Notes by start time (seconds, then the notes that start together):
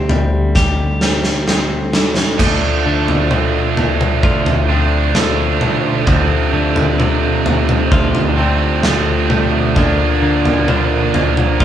Already playing: D2 D3 G3 C4 G4
0.09 G3 D5, floor tom
0.55 G4 A4, kick, snare
1.01 G3 C5, snare
1.24 snare
1.48 C4, snare
1.93 D3 A4, snare
2.17 snare
2.38 D2 D3 F3 A3 D4 A4 C5 D5 F5, kick, floor tom, crash
2.86 D3 A3
3.08 floor tom
3.31 D3 C5, mid tom
3.77 A3, floor tom
4.01 mid tom
4.23 D2 F4 D5, kick
4.46 floor tom
4.68 D3 F3 A3 C4 D4
5.15 D3 F3 A3 D4 C5, snare, floor tom
5.61 A3, mid tom
6.06 D2 F2 C3 D3 F3 A3 C4 C5, kick, floor tom
6.53 D3 A3 D5
6.76 floor tom
7.00 D3, mid tom
7.45 A3 C5, floor tom
7.69 mid tom
7.92 D2 F4 G5, kick
8.15 floor tom
8.36 F2 C3 F3 A3 C4 D5
8.82 F2 C3 D3 F3 A3 C4, snare, floor tom
9.30 A3 D5, mid tom
9.75 D2 D3 F3 A#3 D4 A#4 D5 F5, kick, floor tom
10.22 D3 A#3
10.45 floor tom
10.68 D3 C5, mid tom
11.14 A#3, floor tom
11.37 mid tom
11.60 D2 F4 D5, kick